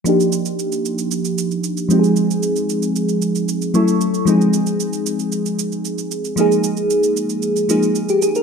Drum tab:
SH |xxxxxxxxxxxxxxxx|xxxxxxxxxxxxxxxx|xxxxxxxxxxxxxxxx|xxxxxxxxxxxxxxxx|